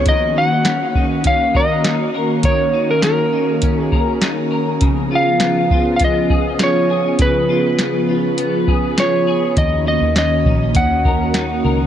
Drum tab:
HH |x-x-x-x-|x-x-x-x-|x-x-x-x-|x-x-x-x-|
SD |--o---o-|--o---o-|--o---o-|--o---o-|
BD |o--ooo--|o---oo--|o--ooo--|o----o--|

HH |x-x-x-x-|
SD |--o---o-|
BD |o--ooo--|